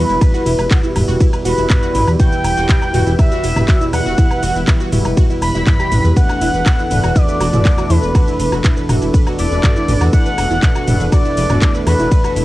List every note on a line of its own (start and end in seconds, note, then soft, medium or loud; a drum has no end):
0.00 12.45 E2 medium
0.00 0.18 B2 loud
0.00 0.18 G3 medium
0.00 0.18 E4 loud
0.00 6.12 E4 medium
0.00 6.12 G4 medium
0.00 0.61 B4 loud
0.00 12.45 B4 medium
0.00 0.61 B5 loud
0.09 0.17 E1 medium
0.09 0.15 E4 medium
0.09 0.15 E5 medium
0.09 shaker soft
0.21 0.93 B2 medium
0.21 0.93 G3 medium
0.21 0.93 E4 medium
0.21 0.27 B4 medium
0.21 0.27 B5 medium
0.21 kick loud
0.21 ride medium
0.21 low woodblock medium
0.21 shaker medium
0.34 0.40 F#4 loud
0.34 0.40 F#5 medium
0.34 shaker soft
0.46 0.54 E1 loud
0.46 0.52 E4 medium
0.46 0.52 E5 medium
0.46 open hi-hat loud
0.46 shaker medium
0.59 0.67 E1 medium
0.59 0.65 B4 medium
0.59 0.65 B5 medium
0.59 low woodblock medium
0.59 shaker soft
0.71 0.77 F#4 loud
0.71 0.77 F#5 medium
0.71 kick loud
0.71 clap loud
0.71 ride medium
0.71 shaker medium
0.84 0.89 E4 medium
0.84 0.89 E5 medium
0.84 shaker soft
0.96 1.04 E1 loud
0.96 1.56 B2 medium
0.96 1.56 G3 medium
0.96 1.56 E4 medium
0.96 1.02 B4 medium
0.96 1.02 B5 medium
0.96 mid tom medium
0.96 open hi-hat loud
0.96 low woodblock medium
0.96 shaker medium
1.08 1.16 E1 medium
1.08 1.14 F#4 loud
1.08 1.14 F#5 medium
1.08 shaker soft
1.20 1.26 E4 medium
1.20 1.26 E5 medium
1.20 kick loud
1.20 ride medium
1.20 shaker medium
1.33 1.39 B4 medium
1.33 1.39 B5 medium
1.33 low woodblock medium
1.33 shaker soft
1.45 1.53 E1 loud
1.45 1.51 F#4 loud
1.45 2.10 B4 loud
1.45 1.51 F#5 medium
1.45 2.10 B5 loud
1.45 open hi-hat loud
1.45 shaker medium
1.58 1.66 E1 medium
1.58 2.17 B2 loud
1.58 2.17 G3 medium
1.58 1.64 E4 medium
1.58 2.17 E4 loud
1.58 1.64 E5 medium
1.58 shaker soft
1.70 1.76 B4 medium
1.70 1.76 B5 medium
1.70 kick loud
1.70 clap loud
1.70 mid tom medium
1.70 ride medium
1.70 low woodblock medium
1.70 shaker medium
1.83 1.88 F#4 loud
1.83 1.88 F#5 medium
1.83 shaker soft
1.95 2.03 A1 loud
1.95 2.01 E4 medium
1.95 2.01 E5 medium
1.95 mid tom medium
1.95 open hi-hat loud
1.95 shaker medium
2.08 2.15 E2 medium
2.08 2.13 B4 medium
2.08 2.13 B5 medium
2.08 low woodblock medium
2.08 shaker soft
2.20 2.91 B2 medium
2.20 2.91 G3 medium
2.20 2.91 E4 medium
2.20 2.26 F#4 loud
2.20 2.26 F#5 medium
2.20 3.09 G5 loud
2.20 3.09 G6 loud
2.20 kick loud
2.20 ride medium
2.20 shaker medium
2.32 2.38 E4 medium
2.32 2.38 E5 medium
2.32 shaker soft
2.44 2.53 E1 loud
2.44 2.51 B4 medium
2.44 2.50 B5 medium
2.44 open hi-hat loud
2.44 low woodblock medium
2.44 shaker medium
2.57 2.65 E1 medium
2.57 2.63 F#4 loud
2.57 2.63 F#5 medium
2.57 shaker soft
2.69 2.75 E4 medium
2.69 2.75 E5 medium
2.69 kick loud
2.69 clap loud
2.69 ride medium
2.69 shaker medium
2.82 2.88 B4 medium
2.82 2.88 B5 medium
2.82 low woodblock medium
2.82 shaker soft
2.94 3.02 E1 loud
2.94 3.54 B2 medium
2.94 3.54 G3 medium
2.94 3.54 E4 medium
2.94 3.00 F#4 loud
2.94 3.00 F#5 medium
2.94 mid tom medium
2.94 open hi-hat loud
2.94 shaker medium
3.07 3.15 E1 medium
3.07 3.13 E4 medium
3.07 3.13 E5 medium
3.07 shaker soft
3.19 3.25 B4 medium
3.19 3.84 E5 loud
3.19 3.25 B5 medium
3.19 3.84 E6 loud
3.19 kick loud
3.19 ride medium
3.19 low woodblock medium
3.19 shaker medium
3.32 3.37 F#4 loud
3.32 3.37 F#5 medium
3.32 shaker soft
3.44 3.52 E1 loud
3.44 3.50 E4 medium
3.44 3.50 E5 medium
3.44 open hi-hat loud
3.44 shaker medium
3.56 3.64 E1 medium
3.56 4.15 B2 loud
3.56 4.15 G3 medium
3.56 4.15 E4 loud
3.56 3.62 B4 medium
3.56 3.62 B5 medium
3.56 mid tom medium
3.56 low woodblock medium
3.56 shaker soft
3.68 3.75 F#4 loud
3.68 3.75 F#5 medium
3.68 kick loud
3.68 clap loud
3.68 ride medium
3.68 shaker medium
3.81 3.87 E4 medium
3.81 3.87 E5 medium
3.81 shaker soft
3.93 4.01 E2 medium
3.93 3.99 B4 medium
3.93 4.58 F#5 loud
3.93 3.99 B5 medium
3.93 4.58 F#6 loud
3.93 open hi-hat loud
3.93 low woodblock medium
3.93 shaker medium
4.06 4.14 E1 medium
4.06 4.12 F#4 loud
4.06 4.12 F#5 medium
4.06 shaker soft
4.18 4.90 B2 medium
4.18 4.90 G3 medium
4.18 4.89 E4 medium
4.18 4.24 E4 medium
4.18 4.24 E5 medium
4.18 kick loud
4.18 ride medium
4.18 shaker medium
4.31 4.37 B4 medium
4.31 4.37 B5 medium
4.31 low woodblock medium
4.31 shaker soft
4.43 4.51 E1 loud
4.43 4.49 F#4 loud
4.43 4.49 F#5 medium
4.43 open hi-hat loud
4.43 shaker medium
4.55 4.63 E1 medium
4.55 4.61 E4 medium
4.55 4.61 E5 medium
4.55 shaker soft
4.68 4.74 B4 medium
4.68 4.74 B5 medium
4.68 kick loud
4.68 clap loud
4.68 ride medium
4.68 low woodblock medium
4.68 shaker medium
4.80 4.86 F#4 loud
4.80 4.86 F#5 medium
4.80 shaker soft
4.92 5.01 E1 loud
4.92 5.52 B2 medium
4.92 5.52 G3 medium
4.92 5.52 E4 medium
4.92 4.98 E4 medium
4.92 4.98 E5 medium
4.92 mid tom medium
4.92 open hi-hat loud
4.92 shaker medium
5.05 5.13 E1 medium
5.05 5.11 B4 medium
5.05 5.11 B5 medium
5.05 low woodblock medium
5.05 shaker soft
5.17 5.23 F#4 loud
5.17 5.23 F#5 medium
5.17 kick loud
5.17 ride medium
5.17 shaker medium
5.30 5.36 E4 medium
5.30 5.36 E5 medium
5.30 shaker soft
5.42 5.50 E1 loud
5.42 5.48 B4 medium
5.42 6.07 B5 loud
5.42 5.48 B5 medium
5.42 6.07 B6 loud
5.42 open hi-hat loud
5.42 low woodblock medium
5.42 shaker medium
5.55 5.63 E1 medium
5.55 6.14 B2 loud
5.55 6.13 G3 medium
5.55 6.13 E4 loud
5.55 5.63 E4 loud
5.55 5.63 E5 medium
5.55 shaker soft
5.67 5.73 E4 medium
5.67 5.73 E5 medium
5.67 kick loud
5.67 clap loud
5.67 mid tom medium
5.67 ride medium
5.67 shaker medium
5.80 5.83 G4 loud
5.80 5.83 G5 medium
5.80 low woodblock medium
5.80 shaker soft
5.92 6.00 A1 medium
5.92 5.95 B4 medium
5.92 5.95 B5 medium
5.92 mid tom medium
5.92 open hi-hat loud
5.92 shaker medium
6.04 6.12 E2 medium
6.04 6.13 B4 medium
6.04 6.13 B5 medium
6.04 shaker soft
6.16 6.88 B2 medium
6.16 6.88 A3 medium
6.16 6.88 D4 medium
6.16 12.45 D4 medium
6.16 12.45 A4 medium
6.16 6.23 B4 medium
6.16 7.17 F#5 loud
6.16 6.23 B5 medium
6.16 7.17 F#6 loud
6.16 kick loud
6.16 ride medium
6.16 shaker medium
6.29 6.35 F#4 loud
6.29 6.35 F#5 medium
6.29 low woodblock medium
6.29 shaker soft
6.41 6.49 E1 medium
6.41 6.47 E4 medium
6.41 6.47 E5 medium
6.41 open hi-hat loud
6.41 shaker medium
6.54 6.62 E1 medium
6.54 6.60 B4 medium
6.54 6.60 B5 medium
6.54 shaker soft
6.66 6.72 F#4 medium
6.66 6.72 F#5 medium
6.66 kick loud
6.66 clap loud
6.66 ride medium
6.66 low woodblock medium
6.66 shaker medium
6.79 6.84 E4 medium
6.79 6.84 E5 medium
6.79 shaker soft
6.91 6.99 E1 medium
6.91 7.51 B2 medium
6.91 7.51 A3 medium
6.91 7.51 D4 medium
6.91 6.97 B4 medium
6.91 6.97 B5 medium
6.91 mid tom medium
6.91 open hi-hat loud
6.91 shaker medium
7.04 7.11 E1 medium
7.04 7.09 F#4 loud
7.04 7.09 F#5 medium
7.04 low woodblock medium
7.04 shaker soft
7.16 7.22 E4 medium
7.16 7.92 D5 loud
7.16 7.22 E5 medium
7.16 7.92 D6 loud
7.16 kick loud
7.16 ride medium
7.16 shaker medium
7.28 7.34 B4 medium
7.28 7.34 B5 medium
7.28 shaker soft
7.40 7.49 E1 medium
7.40 7.46 F#4 loud
7.40 7.46 F#5 medium
7.40 open hi-hat loud
7.40 low woodblock medium
7.40 shaker medium
7.53 7.61 E1 medium
7.53 8.12 B2 loud
7.53 8.12 A3 medium
7.53 8.12 D4 loud
7.53 7.59 E4 medium
7.53 7.59 E5 medium
7.53 mid tom medium
7.53 shaker soft
7.65 7.71 B4 medium
7.65 7.71 B5 medium
7.65 kick loud
7.65 clap loud
7.65 ride medium
7.65 shaker medium
7.78 7.84 F#4 loud
7.78 7.84 F#5 medium
7.78 low woodblock medium
7.78 shaker soft
7.90 7.98 E2 medium
7.90 7.96 E4 medium
7.90 8.55 B4 loud
7.90 7.96 E5 medium
7.90 8.55 B5 loud
7.90 open hi-hat loud
7.90 shaker medium
8.03 8.10 E1 medium
8.03 8.08 B4 medium
8.03 8.08 B5 medium
8.03 shaker soft
8.15 8.86 B2 medium
8.15 8.86 A3 medium
8.15 8.86 D4 medium
8.15 8.21 F#4 loud
8.15 8.21 F#5 medium
8.15 kick loud
8.15 ride medium
8.15 low woodblock medium
8.15 shaker medium
8.27 8.33 E4 medium
8.27 8.33 E5 medium
8.27 shaker soft
8.40 8.48 E1 loud
8.40 8.46 B4 medium
8.40 8.46 B5 medium
8.40 open hi-hat loud
8.40 shaker medium
8.52 8.60 E1 medium
8.52 8.58 F#4 loud
8.52 8.58 F#5 medium
8.52 low woodblock medium
8.52 shaker soft
8.64 8.70 E4 medium
8.64 8.70 E5 medium
8.64 kick loud
8.64 clap loud
8.64 ride medium
8.64 shaker medium
8.77 8.83 B4 medium
8.77 8.83 B5 medium
8.77 shaker soft
8.89 8.97 E1 loud
8.89 9.49 B2 medium
8.89 9.49 A3 medium
8.89 9.49 D4 medium
8.89 8.95 F#4 loud
8.89 8.95 F#5 medium
8.89 mid tom medium
8.89 open hi-hat loud
8.89 low woodblock medium
8.89 shaker medium
9.02 9.10 E1 medium
9.02 9.08 E4 medium
9.02 9.08 E5 medium
9.02 shaker soft
9.14 9.20 B4 medium
9.14 9.20 B5 medium
9.14 kick loud
9.14 ride medium
9.14 shaker medium
9.27 9.32 F#4 loud
9.27 9.32 F#5 medium
9.27 low woodblock medium
9.27 shaker soft
9.39 9.47 E1 medium
9.39 9.45 E4 medium
9.39 10.03 D5 loud
9.39 9.45 E5 medium
9.39 10.03 D6 loud
9.39 open hi-hat loud
9.39 shaker medium
9.51 9.59 E1 medium
9.51 10.10 B2 loud
9.51 10.10 A3 medium
9.51 10.10 D4 loud
9.51 9.57 B4 medium
9.51 9.57 B5 medium
9.51 shaker soft
9.64 9.70 F#4 loud
9.64 9.70 F#5 medium
9.64 kick loud
9.64 clap loud
9.64 mid tom medium
9.64 ride medium
9.64 low woodblock medium
9.64 shaker medium
9.76 9.82 E4 medium
9.76 9.82 E5 medium
9.76 shaker soft
9.88 9.96 A1 loud
9.88 9.94 B4 medium
9.88 9.94 B5 medium
9.88 mid tom medium
9.88 open hi-hat loud
9.88 shaker medium
10.01 10.09 E2 medium
10.01 10.07 F#4 loud
10.01 10.07 F#5 medium
10.01 low woodblock medium
10.01 shaker soft
10.13 10.85 B2 medium
10.13 10.85 A3 medium
10.13 10.85 D4 medium
10.13 10.19 E4 medium
10.13 10.19 E5 medium
10.13 11.03 F#5 loud
10.13 11.03 F#6 loud
10.13 kick loud
10.13 ride medium
10.13 shaker medium
10.26 10.32 B4 medium
10.26 10.32 B5 medium
10.26 shaker soft
10.38 10.46 E1 loud
10.38 10.44 F#4 loud
10.38 10.44 F#5 medium
10.38 open hi-hat loud
10.38 low woodblock medium
10.38 shaker medium
10.51 10.58 E1 medium
10.51 10.56 E4 medium
10.51 10.56 E5 medium
10.51 shaker soft
10.63 10.69 B4 medium
10.63 10.69 B5 medium
10.63 kick loud
10.63 clap loud
10.63 ride medium
10.63 shaker medium
10.75 10.81 F#4 loud
10.75 10.81 F#5 medium
10.75 low woodblock medium
10.75 shaker soft
10.87 10.96 E1 loud
10.87 11.47 B2 medium
10.87 11.47 A3 medium
10.87 11.47 D4 medium
10.87 10.93 E4 medium
10.87 10.93 E5 medium
10.87 mid tom medium
10.87 open hi-hat loud
10.87 shaker medium
11.00 11.08 E1 medium
11.00 11.06 B4 medium
11.00 11.06 B5 medium
11.00 shaker soft
11.12 11.18 F#4 loud
11.12 11.77 D5 loud
11.12 11.18 F#5 medium
11.12 11.77 D6 loud
11.12 kick loud
11.12 ride medium
11.12 low woodblock medium
11.12 shaker medium
11.25 11.31 E4 medium
11.25 11.31 E5 medium
11.25 shaker soft
11.37 11.45 E1 loud
11.37 11.43 B4 medium
11.37 11.43 B5 medium
11.37 open hi-hat loud
11.37 shaker medium
11.50 11.58 E1 medium
11.50 12.09 B2 loud
11.50 12.09 A3 medium
11.50 12.09 D4 loud
11.50 11.56 F#4 loud
11.50 11.56 F#5 medium
11.50 mid tom medium
11.50 low woodblock medium
11.50 shaker soft
11.62 11.68 E4 medium
11.62 11.68 E5 medium
11.62 kick loud
11.62 clap loud
11.62 ride medium
11.62 shaker medium
11.75 11.80 B4 medium
11.75 11.80 B5 medium
11.75 shaker soft
11.87 11.95 E2 medium
11.87 11.93 F#4 loud
11.87 12.45 B4 loud
11.87 11.93 F#5 medium
11.87 12.45 B5 loud
11.87 open hi-hat loud
11.87 low woodblock medium
11.87 shaker medium
11.99 12.07 E1 medium
11.99 12.05 E4 medium
11.99 12.05 E5 medium
11.99 shaker soft
12.11 12.45 B2 medium
12.11 12.45 A3 medium
12.11 12.45 D4 medium
12.11 12.18 B4 medium
12.11 12.18 B5 medium
12.11 kick loud
12.11 ride medium
12.11 shaker medium
12.24 12.30 F#4 loud
12.24 12.30 F#5 medium
12.24 low woodblock soft
12.24 shaker soft
12.36 12.44 E1 loud
12.36 12.42 E4 medium
12.36 12.42 E5 medium
12.36 open hi-hat loud
12.36 shaker medium